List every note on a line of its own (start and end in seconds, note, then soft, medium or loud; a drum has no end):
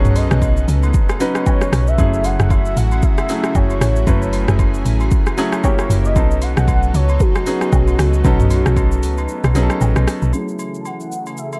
0.00 0.29 B1 loud
0.00 10.29 C#3 medium
0.00 1.20 F#3 medium
0.00 1.94 A3 medium
0.00 1.20 B3 medium
0.00 1.94 B3 medium
0.00 1.21 C#4 medium
0.00 1.21 D#4 medium
0.00 1.94 D#4 medium
0.00 0.75 G#4 medium
0.00 2.00 A4 medium
0.00 0.18 C#5 loud
0.00 1.95 F#5 loud
0.05 mid tom medium
0.05 shaker medium
0.16 0.68 D#5 loud
0.16 open hi-hat soft
0.16 high agogo medium
0.16 shaker medium
0.31 0.66 B1 loud
0.31 cross-stick loud
0.31 shaker soft
0.42 kick medium
0.42 high agogo medium
0.42 shaker medium
0.57 shaker medium
0.68 0.93 C#2 medium
0.68 open hi-hat medium
0.68 shaker medium
0.83 high agogo medium
0.83 shaker soft
0.94 kick loud
0.94 shaker medium
1.09 cross-stick medium
1.09 high agogo medium
1.09 shaker medium
1.20 1.84 F#3 medium
1.20 1.85 B3 medium
1.20 1.85 C#4 medium
1.20 1.85 D#4 medium
1.20 1.85 B4 loud
1.20 open hi-hat medium
1.20 shaker loud
1.35 cross-stick medium
1.35 high agogo medium
1.35 shaker soft
1.46 1.89 C#5 loud
1.46 kick loud
1.46 low woodblock medium
1.46 shaker medium
1.61 cross-stick medium
1.61 high agogo medium
1.61 shaker soft
1.72 1.97 B1 loud
1.72 cross-stick loud
1.72 open hi-hat medium
1.72 shaker loud
1.87 2.26 E5 loud
1.87 shaker medium
1.98 2.37 F#1 loud
1.98 2.83 F#3 medium
1.98 5.60 F#3 medium
1.98 2.83 A3 medium
1.98 5.60 A3 medium
1.98 2.83 C#4 medium
1.98 6.12 E4 medium
1.98 2.83 E4 medium
1.98 4.05 F#4 medium
1.98 2.83 G#4 medium
1.98 kick loud
1.98 high agogo medium
1.98 shaker medium
2.14 shaker medium
2.24 2.53 F#5 loud
2.24 open hi-hat soft
2.24 high agogo medium
2.24 shaker medium
2.40 2.75 F#1 loud
2.40 cross-stick loud
2.40 shaker soft
2.50 2.79 E5 loud
2.50 kick medium
2.50 high agogo medium
2.50 shaker medium
2.66 shaker medium
2.77 3.01 A1 medium
2.77 3.05 F#5 loud
2.77 open hi-hat medium
2.77 shaker medium
2.92 high agogo medium
2.92 shaker soft
3.02 3.57 E5 loud
3.02 kick loud
3.02 shaker medium
3.18 cross-stick medium
3.18 high agogo medium
3.18 shaker medium
3.29 3.93 F#3 medium
3.29 3.93 A3 medium
3.29 3.93 C#4 medium
3.29 3.94 E4 medium
3.29 3.94 G#4 medium
3.29 open hi-hat medium
3.29 shaker loud
3.44 cross-stick medium
3.44 high agogo medium
3.44 shaker medium
3.55 3.80 F#1 medium
3.55 3.81 C#5 medium
3.55 kick loud
3.55 low woodblock medium
3.55 shaker medium
3.70 high agogo medium
3.70 shaker soft
3.81 4.06 A1 loud
3.81 4.82 C#5 medium
3.81 cross-stick loud
3.81 open hi-hat medium
3.81 shaker loud
3.96 shaker medium
4.07 4.46 F#1 loud
4.07 4.91 F#3 medium
4.07 4.92 A3 medium
4.07 4.92 C#4 medium
4.07 4.92 E4 medium
4.07 5.62 G#4 medium
4.07 4.92 B4 medium
4.07 kick loud
4.07 high agogo medium
4.07 shaker medium
4.22 shaker medium
4.33 open hi-hat soft
4.33 high agogo medium
4.33 shaker medium
4.48 4.83 F#1 loud
4.48 cross-stick loud
4.48 shaker medium
4.59 kick medium
4.59 high agogo medium
4.59 shaker medium
4.74 shaker medium
4.85 5.10 A1 medium
4.85 open hi-hat medium
4.85 shaker medium
5.00 high agogo medium
5.00 shaker soft
5.11 kick loud
5.11 shaker medium
5.26 cross-stick medium
5.26 high agogo medium
5.26 shaker medium
5.37 5.62 F#3 loud
5.37 5.64 A3 medium
5.37 5.63 C#4 medium
5.37 5.63 E4 medium
5.37 5.64 G#4 loud
5.37 open hi-hat medium
5.37 shaker loud
5.52 cross-stick medium
5.52 high agogo medium
5.52 shaker soft
5.63 6.07 F#3 medium
5.63 10.29 F#3 loud
5.63 6.07 A#3 medium
5.63 6.15 A#3 medium
5.63 6.07 C#4 medium
5.63 6.07 E4 medium
5.63 6.15 G4 medium
5.63 6.08 G4 medium
5.63 6.02 C#5 loud
5.63 kick loud
5.63 low woodblock medium
5.63 shaker medium
5.79 cross-stick medium
5.79 high agogo medium
5.79 shaker medium
5.90 6.17 F#1 loud
5.90 open hi-hat medium
5.90 shaker loud
6.05 6.44 D#5 loud
6.05 shaker medium
6.16 6.55 B1 loud
6.16 7.00 F#3 medium
6.16 10.29 A3 medium
6.16 10.29 B3 medium
6.16 7.00 B3 medium
6.16 7.00 C#4 medium
6.16 10.29 D#4 medium
6.16 7.01 D#4 medium
6.16 7.01 A4 medium
6.16 kick loud
6.16 high agogo medium
6.16 shaker medium
6.31 shaker medium
6.42 6.96 F#5 loud
6.42 open hi-hat soft
6.42 high agogo medium
6.42 shaker medium
6.57 6.92 B1 loud
6.57 cross-stick loud
6.57 shaker medium
6.68 kick medium
6.68 high agogo medium
6.68 shaker medium
6.83 shaker soft
6.94 7.19 C#2 medium
6.94 7.22 C#5 loud
6.94 open hi-hat medium
6.94 shaker medium
7.09 high agogo medium
7.09 shaker soft
7.20 9.81 F#4 loud
7.20 kick loud
7.20 shaker medium
7.35 cross-stick medium
7.35 high agogo medium
7.35 shaker medium
7.46 8.11 F#3 medium
7.46 8.11 B3 medium
7.46 8.11 C#4 medium
7.46 8.11 D#4 medium
7.46 8.11 G#4 medium
7.46 open hi-hat medium
7.46 shaker loud
7.61 cross-stick medium
7.61 high agogo medium
7.61 shaker soft
7.73 7.97 B1 medium
7.73 kick loud
7.73 low woodblock medium
7.73 shaker medium
7.88 high agogo medium
7.88 shaker medium
7.98 8.23 C#2 medium
7.98 cross-stick loud
7.98 open hi-hat medium
7.98 shaker loud
8.14 shaker medium
8.24 8.64 B1 loud
8.24 9.09 F#3 medium
8.24 9.09 B3 medium
8.24 9.09 C#4 medium
8.24 9.09 D#4 medium
8.24 9.09 A4 loud
8.24 kick loud
8.24 high agogo medium
8.24 shaker medium
8.40 mid tom medium
8.40 shaker medium
8.51 open hi-hat soft
8.51 high agogo medium
8.51 shaker medium
8.66 9.04 B1 loud
8.66 cross-stick loud
8.66 shaker soft
8.77 kick medium
8.77 high agogo medium
8.77 shaker medium
8.92 shaker medium
9.03 9.27 C#2 medium
9.03 open hi-hat medium
9.03 shaker medium
9.18 high agogo medium
9.18 shaker soft
9.29 shaker medium
9.44 9.54 B1 loud
9.44 cross-stick medium
9.44 high agogo medium
9.44 shaker medium
9.55 9.69 B1 medium
9.55 10.19 F#3 medium
9.55 10.19 B3 medium
9.55 10.20 C#4 medium
9.55 10.20 D#4 medium
9.55 9.63 G#4 medium
9.55 open hi-hat medium
9.55 shaker loud
9.62 10.23 A4 loud
9.70 cross-stick medium
9.70 high agogo medium
9.70 shaker medium
9.81 9.95 A1 loud
9.81 low woodblock medium
9.81 shaker medium
9.96 10.07 B1 medium
9.96 cross-stick medium
9.96 high agogo medium
9.96 shaker medium
10.08 cross-stick loud
10.08 open hi-hat medium
10.08 shaker loud
10.22 10.33 B1 medium
10.22 shaker medium
10.33 11.60 C#3 medium
10.33 11.60 E3 medium
10.33 11.60 F#3 medium
10.33 11.60 A3 medium
10.33 11.60 C#4 medium
10.33 11.60 E4 medium
10.33 11.60 G#4 loud
10.33 11.60 G#4 medium
10.33 high agogo medium
10.33 shaker medium
10.48 shaker soft
10.59 high agogo medium
10.59 shaker medium
10.75 shaker soft
10.80 10.88 A5 medium
10.85 11.38 F#5 loud
10.85 high agogo medium
10.85 shaker medium
11.00 shaker soft
11.12 shaker medium
11.26 high agogo medium
11.26 shaker soft
11.37 11.60 E5 loud
11.37 shaker medium
11.53 high agogo medium
11.53 shaker soft